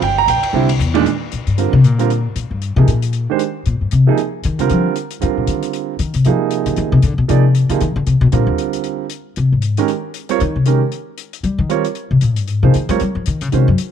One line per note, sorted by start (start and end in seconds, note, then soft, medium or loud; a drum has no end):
0.02 0.27 G1 medium
0.02 0.18 G5 medium
0.02 ride medium
0.18 0.28 A#5 loud
0.27 0.42 A#1 medium
0.27 0.67 G5 medium
0.27 hi-hat pedal medium
0.27 ride medium
0.43 muted upright bass stroke soft
0.43 ride medium
0.53 0.79 C2 medium
0.53 0.67 D3 medium
0.53 0.68 G3 medium
0.53 0.68 C4 medium
0.53 0.68 E4 medium
0.69 ride medium
0.79 1.05 E2 loud
0.79 hi-hat pedal medium
0.94 1.04 A#2 medium
0.94 1.05 D#3 medium
0.94 1.05 G#3 medium
0.94 1.05 D4 loud
0.94 ride medium
1.06 closed hi-hat soft
1.32 1.46 A#2 medium
1.32 closed hi-hat soft
1.47 1.71 G2 medium
1.47 closed hi-hat soft
1.58 1.72 D3 soft
1.58 1.72 G3 soft
1.58 1.72 C4 soft
1.58 1.72 F4 soft
1.58 1.72 A#4 soft
1.58 closed hi-hat soft
1.73 1.84 C3 loud
1.84 2.25 A#2 medium
1.84 closed hi-hat soft
1.98 2.08 D3 medium
1.98 2.09 G3 medium
1.98 2.09 C4 medium
1.98 2.09 F4 medium
1.98 2.10 A#4 medium
1.98 closed hi-hat soft
2.10 closed hi-hat soft
2.36 2.50 A#2 medium
2.36 closed hi-hat soft
2.50 2.75 G2 medium
2.62 closed hi-hat soft
2.76 2.87 C3 loud
2.76 2.87 C3 soft
2.76 2.87 F3 soft
2.76 2.88 A#3 soft
2.76 2.88 D#4 soft
2.76 2.88 G#4 soft
2.88 3.26 A#2 medium
2.88 closed hi-hat soft
3.02 closed hi-hat soft
3.13 closed hi-hat soft
3.30 3.39 D#3 medium
3.30 3.39 G#3 medium
3.30 3.40 D4 medium
3.30 3.40 G4 soft
3.30 3.40 C5 medium
3.39 closed hi-hat soft
3.66 3.80 A#2 medium
3.66 closed hi-hat soft
3.81 3.91 G2 soft
3.91 4.07 C3 medium
3.91 closed hi-hat soft
4.07 4.17 C3 medium
4.07 4.17 F3 medium
4.07 4.17 A#3 medium
4.07 4.17 D#4 medium
4.07 4.18 G#4 medium
4.18 closed hi-hat soft
4.44 4.58 D#3 medium
4.44 closed hi-hat soft
4.59 4.69 C3 soft
4.59 4.93 D3 medium
4.59 4.94 G3 medium
4.59 4.94 C4 medium
4.59 4.94 F4 soft
4.59 4.95 A#4 medium
4.59 closed hi-hat soft
4.70 4.85 F3 medium
4.70 closed hi-hat soft
4.96 closed hi-hat soft
5.11 closed hi-hat soft
5.21 5.92 D3 medium
5.21 5.37 D3 medium
5.21 5.93 G3 soft
5.21 5.93 C4 soft
5.21 5.93 F4 soft
5.21 5.93 A#4 medium
5.21 closed hi-hat soft
5.37 5.47 A#2 soft
5.47 5.62 D#3 medium
5.47 closed hi-hat soft
5.63 closed hi-hat soft
5.73 closed hi-hat soft
5.99 6.13 D#3 medium
5.99 closed hi-hat soft
6.14 6.25 C3 medium
6.14 closed hi-hat soft
6.25 6.97 C3 soft
6.25 6.97 F3 soft
6.25 6.35 F3 medium
6.25 6.97 A#3 soft
6.25 6.97 D#4 soft
6.25 6.97 G#4 medium
6.25 closed hi-hat soft
6.51 closed hi-hat soft
6.66 6.77 D3 medium
6.66 closed hi-hat soft
6.76 6.91 D#3 medium
6.76 closed hi-hat soft
6.92 7.03 C3 medium
7.02 7.17 D3 loud
7.02 closed hi-hat soft
7.18 7.28 B2 medium
7.28 7.67 C3 medium
7.28 7.42 F3 medium
7.28 7.42 A#3 medium
7.28 7.43 D#4 soft
7.28 7.43 G#4 medium
7.28 7.43 D5 medium
7.28 closed hi-hat soft
7.55 closed hi-hat soft
7.69 7.79 C3 medium
7.69 7.80 D3 medium
7.69 7.80 F3 soft
7.69 7.80 A#3 soft
7.69 7.80 D#4 soft
7.69 7.80 G#4 medium
7.69 closed hi-hat soft
7.81 7.95 D#3 medium
7.81 closed hi-hat soft
7.96 8.06 D3 medium
8.07 8.20 C3 medium
8.07 closed hi-hat soft
8.21 8.32 B2 loud
8.32 8.46 A#2 medium
8.32 9.03 D3 medium
8.32 9.04 G3 soft
8.32 9.04 C4 soft
8.32 9.04 F4 soft
8.32 9.04 A#4 medium
8.32 closed hi-hat soft
8.47 8.53 D#2 medium
8.58 closed hi-hat soft
8.73 closed hi-hat soft
8.84 closed hi-hat soft
9.10 closed hi-hat soft
9.36 9.51 C3 medium
9.36 closed hi-hat soft
9.52 9.76 G#2 medium
9.62 closed hi-hat soft
9.77 9.87 D#3 medium
9.77 9.88 G#3 medium
9.77 9.88 C#4 medium
9.77 9.88 G4 medium
9.77 9.88 A#4 medium
9.77 closed hi-hat soft
9.88 closed hi-hat soft
10.14 closed hi-hat soft
10.29 10.39 G3 medium
10.29 10.39 C4 medium
10.29 10.40 F4 medium
10.29 10.40 A#4 medium
10.29 10.40 C#5 medium
10.29 closed hi-hat soft
10.40 10.55 D#3 medium
10.40 closed hi-hat soft
10.56 10.80 C3 medium
10.66 10.80 D#3 soft
10.66 10.80 G#3 soft
10.66 10.80 C#4 soft
10.66 10.80 G4 soft
10.66 10.81 A#4 medium
10.66 closed hi-hat soft
10.92 closed hi-hat soft
11.18 closed hi-hat soft
11.33 closed hi-hat soft
11.43 11.58 G3 medium
11.43 closed hi-hat soft
11.58 11.83 D#3 medium
11.69 11.83 G3 medium
11.69 11.83 C4 medium
11.69 11.84 F4 soft
11.69 11.84 A#4 medium
11.69 11.84 C#5 medium
11.69 closed hi-hat soft
11.85 closed hi-hat soft
11.95 closed hi-hat soft
12.11 12.21 C3 medium
12.21 12.37 A#2 medium
12.21 closed hi-hat soft
12.36 12.48 G2 medium
12.36 closed hi-hat soft
12.48 12.62 G#2 medium
12.48 closed hi-hat soft
12.63 12.73 C3 medium
12.63 12.73 F3 medium
12.63 12.73 A#3 soft
12.63 12.73 D#4 soft
12.63 12.73 G#4 medium
12.63 12.74 C5 medium
12.74 12.88 D#3 medium
12.74 closed hi-hat soft
12.89 12.99 G3 medium
12.89 12.99 G#3 loud
12.89 12.99 C4 soft
12.89 12.99 F4 medium
12.89 12.99 A#4 medium
12.89 12.99 C#5 medium
12.89 closed hi-hat soft
13.00 13.14 G3 medium
13.00 closed hi-hat soft
13.15 13.26 F3 medium
13.26 13.41 D#3 medium
13.26 closed hi-hat soft
13.41 13.52 C#3 medium
13.41 closed hi-hat soft
13.52 13.67 C3 medium
13.52 13.66 D#3 soft
13.52 13.66 G#3 soft
13.52 13.66 C#4 soft
13.52 13.66 F#4 soft
13.52 13.67 C5 soft
13.52 closed hi-hat soft
13.68 13.74 F#2 medium
13.78 closed hi-hat soft